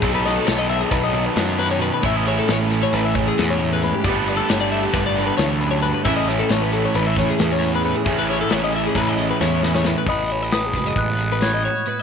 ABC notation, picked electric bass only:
X:1
M:9/8
L:1/8
Q:3/8=90
K:Alyd
V:1 name="Picked electric bass" clef=bass
B,,,2 B,,,2 B,,,2 F,,3 | A,,,2 A,,,2 A,,,2 E,,3 | =G,,,2 G,,,2 G,,,2 =D,,3 | A,,,2 A,,,2 A,,,2 E,,3 |
A,,,2 A,,,2 A,,,2 E,,3 | A,,,3 F,,, A,,,4 z |]